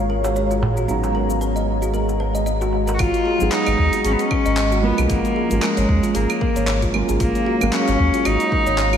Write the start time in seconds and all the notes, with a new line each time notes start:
Already playing: G#1 F#3 G#3 A#3 C#4 G#4 C#5 F5 A#5
0.10 A#4
0.24 C#5, darbuka tek, cabasa
0.36 C#5, cabasa
0.51 F4, darbuka ka, cabasa
0.62 darbuka tek, darbuka dum
0.77 F#4, cabasa
0.87 G#1 F#3 B3 C#4 D#4 F#4 A#5, cabasa
1.04 darbuka tek, cabasa
1.15 A#4
1.30 cabasa
1.41 B4, cabasa
1.56 D#5, cabasa
1.82 F#4, cabasa
1.86 D#5
1.94 A#4, cabasa
2.09 darbuka ka, cabasa
2.20 B4
2.35 D#5, cabasa
2.46 D#5, cabasa
2.61 F#4, darbuka tek, cabasa
2.73 darbuka ka
2.88 A#4, darbuka ka, darbuka tek, cabasa
2.94 F#4
2.99 G#1 F4 F#4, kick, open hi-hat, cabasa, claves
3.14 open hi-hat, cabasa
3.25 G#4
3.38 G#1 F#3 B3 D#4, cabasa
3.42 G#4
3.52 D#4 B4, clap, open hi-hat, cabasa
3.66 G#1 D#5, open hi-hat, cabasa, claves
3.79 D#2, kick
3.93 F#4, open hi-hat, cabasa
4.04 G#1 C#4 G#4, open hi-hat, cabasa
4.13 B3
4.19 C#4, open hi-hat, cabasa
4.31 B4, kick, claves
4.46 G#1 D#5, open hi-hat, cabasa
4.57 D#5, clap, open hi-hat, cabasa
4.72 F#4, cabasa
4.82 F3 G#3 A#3 B3 C#4 F4
4.98 B1 G#4, open hi-hat, cabasa, claves
5.09 G#1 A#3 F4, kick, open hi-hat, cabasa
5.25 open hi-hat, cabasa
5.35 G#4 C#5
5.49 G#1 F3 G#3 A#3 C#4, open hi-hat, cabasa
5.53 F4
5.62 G#3 A#4 F5, clap, open hi-hat, cabasa, claves
5.77 G#1 C#5, open hi-hat, cabasa
5.89 D#2, kick
6.03 F4, open hi-hat, cabasa
6.15 G#1 A#3 G#4, open hi-hat, cabasa
6.30 open hi-hat, cabasa, claves
6.41 A#4, kick
6.56 G#1 C#5, open hi-hat, cabasa
6.67 C#5, clap, open hi-hat, cabasa
6.82 F4, kick, open hi-hat, cabasa
6.92 F#3 G#3 A#3 C#4, claves
6.96 F4
7.09 G#1 G#4, open hi-hat, cabasa
7.20 G#1 A#3 F4, kick, open hi-hat, cabasa
7.35 open hi-hat, cabasa
7.46 F#4
7.59 G#1 F#3 G#3 A#3 C#4 F5, cabasa, claves
7.72 C#4 A#4, clap, open hi-hat, cabasa
7.88 G#1 C#5, open hi-hat, cabasa
7.99 D#2, kick
8.14 F4, open hi-hat, cabasa
8.25 G#1 D#4 F#4, open hi-hat, cabasa, claves
8.40 open hi-hat, cabasa
8.52 A#4, kick
8.66 G#1 C#5, open hi-hat, cabasa
8.78 C#5, clap, open hi-hat, cabasa
8.93 F4, cabasa, claves